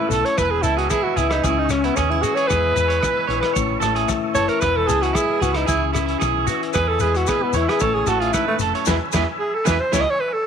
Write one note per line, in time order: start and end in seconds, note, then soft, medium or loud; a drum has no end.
0.00 0.12 G#2 medium
0.00 0.38 A2 medium
0.00 0.16 E3 medium
0.00 0.36 A3 medium
0.00 0.35 C#4 medium
0.00 0.11 E4 medium
0.00 0.36 A5 medium
0.00 0.35 C#6 medium
0.00 4.59 E6 medium
0.09 0.22 B1 medium
0.09 0.38 F#2 medium
0.09 0.26 A4 medium
0.09 0.24 A4 medium
0.09 closed hi-hat medium
0.09 shekere medium
0.25 0.39 C#5 loud
0.25 closed hi-hat medium
0.37 0.60 E1 medium
0.37 1.45 E2 medium
0.37 0.91 B3 medium
0.37 0.52 B4 medium
0.37 0.63 B4 medium
0.37 3.53 G#5 medium
0.37 1.42 B5 medium
0.37 kick medium
0.37 cross-stick medium
0.37 closed hi-hat medium
0.37 shekere medium
0.51 0.64 G#4 medium
0.62 0.87 C#2 medium
0.62 1.41 G#3 medium
0.62 0.79 E4 medium
0.62 0.76 A4 medium
0.62 closed hi-hat soft
0.62 shekere medium
0.77 0.91 F#4 medium
0.77 0.89 G#4 medium
0.77 closed hi-hat medium
0.89 1.17 B3 medium
0.89 1.16 E4 medium
0.89 1.04 G#4 medium
0.89 kick medium
0.89 cross-stick medium
0.89 closed hi-hat medium
0.89 shekere medium
1.03 1.19 F#4 medium
1.16 1.39 C#2 loud
1.16 1.45 E3 medium
1.16 1.45 B3 medium
1.16 1.33 E4 medium
1.16 1.29 G#4 medium
1.16 closed hi-hat medium
1.16 shekere medium
1.30 1.47 D#4 medium
1.30 1.43 E4 medium
1.30 cross-stick medium
1.30 closed hi-hat medium
1.30 shekere soft
1.43 1.89 C#2 loud
1.43 2.24 C#3 medium
1.43 2.24 E3 soft
1.43 1.70 G#3 medium
1.43 1.96 C#4 medium
1.43 1.60 E4 medium
1.43 1.69 G#4 medium
1.43 2.49 C#6 medium
1.43 kick medium
1.43 closed hi-hat soft
1.43 shekere medium
1.58 1.73 D#4 medium
1.69 2.47 G#3 medium
1.69 1.86 C#4 medium
1.69 muted clean electric guitar stroke medium
1.69 cross-stick medium
1.69 closed hi-hat soft
1.69 shekere medium
1.84 1.97 B3 medium
1.84 1.96 E4 medium
1.84 closed hi-hat soft
1.84 shekere soft
1.96 2.20 D#2 medium
1.96 2.11 B3 medium
1.96 2.12 C#4 medium
1.96 2.22 G#4 medium
1.96 kick medium
1.96 cross-stick medium
1.96 closed hi-hat soft
1.96 shekere medium
2.10 2.50 C#4 medium
2.10 2.23 E4 medium
2.22 2.49 E3 medium
2.22 2.52 E4 medium
2.22 2.36 F#4 medium
2.22 2.36 G#4 medium
2.22 closed hi-hat soft
2.22 shekere medium
2.35 2.47 G#4 medium
2.35 2.48 C#5 loud
2.35 closed hi-hat soft
2.35 shekere soft
2.47 3.56 E2 medium
2.47 2.72 E2 medium
2.47 3.28 E3 medium
2.47 2.76 G#3 medium
2.47 2.74 G#4 medium
2.47 3.55 B4 loud
2.47 3.54 B5 medium
2.47 kick medium
2.47 cross-stick medium
2.47 closed hi-hat soft
2.47 shekere medium
2.51 3.01 B3 medium
2.51 3.28 G#4 medium
2.76 2.99 E2 medium
2.76 3.53 G#3 medium
2.76 2.88 B4 medium
2.76 closed hi-hat soft
2.76 shekere medium
2.88 3.00 C#5 medium
2.88 closed hi-hat medium
2.88 shekere soft
3.01 3.56 B3 medium
3.01 3.27 B4 medium
3.01 kick medium
3.01 cross-stick medium
3.01 closed hi-hat soft
3.01 shekere medium
3.27 3.41 A#1 medium
3.27 4.35 E3 medium
3.27 3.53 G#4 medium
3.27 3.41 C#5 medium
3.27 closed hi-hat soft
3.41 3.53 B4 medium
3.41 cross-stick medium
3.41 closed hi-hat medium
3.54 3.78 A1 loud
3.54 4.63 A2 medium
3.54 4.08 C#4 medium
3.54 3.80 C#5 medium
3.54 4.62 A5 medium
3.54 kick medium
3.54 closed hi-hat soft
3.54 shekere medium
3.58 4.63 C#6 medium
3.80 4.04 A1 medium
3.80 4.60 A3 medium
3.80 3.95 A4 medium
3.80 cross-stick medium
3.80 closed hi-hat medium
3.80 shekere medium
3.95 4.08 G#4 medium
3.95 closed hi-hat medium
4.08 4.60 C#4 medium
4.08 kick medium
4.08 cross-stick medium
4.08 closed hi-hat medium
4.08 shekere medium
4.34 4.47 F#1 medium
4.34 5.41 E3 medium
4.34 6.49 E4 soft
4.34 4.48 A4 medium
4.34 4.50 C#5 loud
4.34 closed hi-hat medium
4.34 shekere loud
4.48 4.62 A#4 medium
4.48 4.61 C#5 medium
4.48 closed hi-hat medium
4.61 4.85 E1 medium
4.61 5.68 E2 medium
4.61 5.14 B3 medium
4.61 4.78 B4 loud
4.61 4.87 B4 medium
4.61 7.78 G#5 medium
4.61 5.68 B5 medium
4.61 6.71 E6 medium
4.61 kick loud
4.61 cross-stick medium
4.61 closed hi-hat medium
4.61 shekere medium
4.77 4.89 A4 medium
4.87 5.11 C#2 medium
4.87 5.66 G#3 medium
4.87 5.04 G#4 loud
4.87 5.01 A4 medium
4.87 closed hi-hat medium
4.87 shekere loud
5.01 5.17 F#4 medium
5.01 5.13 G#4 medium
5.01 closed hi-hat medium
5.01 shekere soft
5.13 5.41 B3 medium
5.13 5.40 E4 medium
5.13 5.43 G#4 medium
5.13 kick medium
5.13 cross-stick medium
5.13 closed hi-hat medium
5.13 shekere medium
5.40 5.64 C#2 loud
5.40 6.48 E3 medium
5.40 5.69 B3 medium
5.40 5.58 F#4 medium
5.40 5.53 G#4 medium
5.40 closed hi-hat medium
5.40 shekere medium
5.54 5.67 D#4 medium
5.54 5.66 E4 medium
5.54 cross-stick medium
5.54 closed hi-hat medium
5.66 6.13 C#2 loud
5.66 6.49 C#3 medium
5.66 6.21 C#4 medium
5.66 5.84 E4 medium
5.66 5.93 G#4 medium
5.66 kick medium
5.66 closed hi-hat medium
5.66 shekere medium
5.70 6.75 C#6 medium
5.93 6.05 E4 medium
5.93 muted steel-string acoustic guitar stroke medium
5.93 cross-stick medium
5.93 closed hi-hat medium
5.93 shekere loud
6.06 6.19 E4 medium
6.06 closed hi-hat medium
6.20 6.44 B1 medium
6.20 6.73 C#4 medium
6.20 6.46 G#4 medium
6.20 kick medium
6.20 cross-stick medium
6.20 closed hi-hat soft
6.20 shekere medium
6.47 7.55 E3 medium
6.47 6.61 F#4 medium
6.47 muted steel-string acoustic guitar stroke medium
6.47 closed hi-hat medium
6.47 shekere loud
6.63 closed hi-hat soft
6.72 7.82 E2 medium
6.72 6.98 E2 medium
6.72 7.28 B3 medium
6.72 7.00 G#4 medium
6.72 6.90 B4 medium
6.72 7.80 B5 medium
6.72 8.84 E6 medium
6.72 kick medium
6.72 cross-stick medium
6.72 closed hi-hat medium
6.72 shekere medium
6.88 7.03 A4 medium
6.99 7.24 E2 medium
6.99 7.79 G#3 medium
6.99 7.18 G#4 medium
6.99 7.14 B4 medium
6.99 closed hi-hat soft
6.99 shekere loud
7.15 7.29 F#4 medium
7.15 muted clean electric guitar stroke medium
7.15 closed hi-hat soft
7.15 shekere soft
7.27 7.55 B3 medium
7.27 7.44 G#4 medium
7.27 7.53 B4 medium
7.27 kick medium
7.27 cross-stick medium
7.27 closed hi-hat soft
7.27 shekere medium
7.43 7.58 B3 medium
7.53 7.66 E2 medium
7.53 8.64 E3 medium
7.53 7.82 B3 medium
7.53 7.71 E4 medium
7.53 7.68 C#5 medium
7.53 closed hi-hat medium
7.53 shekere medium
7.68 7.83 G#4 medium
7.68 7.81 B4 medium
7.68 cross-stick medium
7.68 closed hi-hat medium
7.78 8.04 A1 loud
7.78 8.88 A2 medium
7.78 8.85 C#4 medium
7.78 7.96 A4 loud
7.78 8.06 C#5 medium
7.78 8.86 A5 medium
7.78 8.85 C#6 medium
7.78 kick medium
7.78 closed hi-hat soft
7.78 shekere medium
7.94 8.10 G#4 medium
8.06 8.29 A1 medium
8.06 8.85 A3 medium
8.06 8.22 F#4 medium
8.06 8.20 A4 medium
8.06 cross-stick medium
8.06 closed hi-hat soft
8.06 shekere loud
8.20 8.35 F4 medium
8.20 8.33 G#4 medium
8.20 closed hi-hat medium
8.33 8.60 G#2 medium
8.33 8.47 E4 medium
8.33 8.60 B4 medium
8.33 kick medium
8.33 cross-stick medium
8.33 closed hi-hat medium
8.33 shekere medium
8.47 8.56 A3 medium
8.59 8.71 F1 medium
8.59 8.88 F#2 medium
8.59 8.74 A4 medium
8.59 closed hi-hat medium
8.59 shekere loud
8.75 8.87 C#5 medium
8.75 closed hi-hat soft
8.85 8.98 E2 medium
8.85 8.96 E3 medium
8.85 8.97 G#3 medium
8.85 8.96 B3 medium
8.85 8.96 E4 medium
8.85 8.96 G#4 medium
8.85 8.96 B4 medium
8.85 10.47 G#5 medium
8.85 9.92 B5 medium
8.85 10.47 E6 medium
8.85 kick medium
8.85 snare medium
8.85 shekere loud
9.12 9.25 E2 loud
9.12 9.23 E3 medium
9.12 9.23 G#3 medium
9.12 9.23 B3 medium
9.12 9.23 E4 loud
9.12 9.23 G#4 medium
9.12 9.23 B4 medium
9.12 kick medium
9.12 snare medium
9.12 shekere loud
9.39 9.56 G#4 medium
9.54 9.68 A4 medium
9.65 9.78 E2 loud
9.65 9.75 E3 medium
9.65 9.76 G#3 medium
9.65 9.76 B3 medium
9.65 9.75 E4 loud
9.65 9.75 G#4 loud
9.65 9.75 B4 medium
9.65 9.81 B4 medium
9.65 kick medium
9.65 snare medium
9.65 shekere medium
9.80 9.94 C5 medium
9.92 10.04 C#2 loud
9.92 10.02 E3 loud
9.92 10.03 G#3 medium
9.92 10.03 C#4 medium
9.92 10.02 E4 medium
9.92 10.02 G#4 medium
9.92 10.02 C#5 medium
9.92 10.47 C#6 medium
9.92 kick medium
9.92 snare medium
9.92 shekere loud
10.01 10.12 D#5 loud
10.10 10.21 C#5 loud
10.20 10.35 B4 medium
10.33 10.46 A4 medium